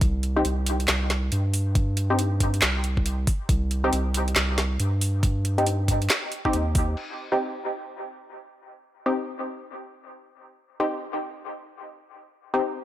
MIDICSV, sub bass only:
0, 0, Header, 1, 2, 480
1, 0, Start_track
1, 0, Key_signature, -3, "minor"
1, 0, Tempo, 434783
1, 15, Time_signature, 4, 2, 24, 8
1, 14176, End_track
2, 0, Start_track
2, 0, Title_t, "Sub bass"
2, 0, Program_c, 0, 38
2, 16, Note_on_c, 0, 36, 98
2, 481, Note_off_c, 0, 36, 0
2, 497, Note_on_c, 0, 36, 99
2, 961, Note_off_c, 0, 36, 0
2, 979, Note_on_c, 0, 36, 99
2, 1442, Note_off_c, 0, 36, 0
2, 1459, Note_on_c, 0, 43, 98
2, 2882, Note_off_c, 0, 43, 0
2, 2898, Note_on_c, 0, 36, 98
2, 3602, Note_off_c, 0, 36, 0
2, 3855, Note_on_c, 0, 36, 95
2, 4320, Note_off_c, 0, 36, 0
2, 4337, Note_on_c, 0, 36, 98
2, 4801, Note_off_c, 0, 36, 0
2, 4815, Note_on_c, 0, 36, 98
2, 5280, Note_off_c, 0, 36, 0
2, 5296, Note_on_c, 0, 43, 97
2, 6721, Note_off_c, 0, 43, 0
2, 7216, Note_on_c, 0, 39, 92
2, 7681, Note_off_c, 0, 39, 0
2, 14176, End_track
0, 0, End_of_file